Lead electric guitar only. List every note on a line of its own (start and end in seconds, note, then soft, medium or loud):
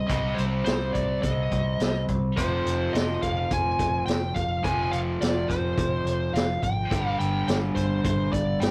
0.07 0.38 D#5 medium
0.35 0.43 C5 medium
0.65 0.95 C5 medium
0.93 1.22 D5 medium
1.22 2.04 D#5 medium
2.37 2.96 C5 medium
2.93 3.22 D#5 medium
3.22 3.52 F5 medium
3.52 4.05 G#5 medium
4.06 4.36 G5 medium
4.34 4.65 F5 medium
4.64 4.94 G#5 medium
4.91 4.99 F5 medium
5.21 5.51 D5 medium
5.48 6.37 C5 medium
6.34 6.60 F5 medium
6.63 7.18 G5 medium
7.20 7.46 G5 medium
7.48 7.55 G5 medium
7.75 8.03 C5 medium
8.04 8.32 C5 medium
8.33 8.62 D5 medium
8.60 8.71 G5 medium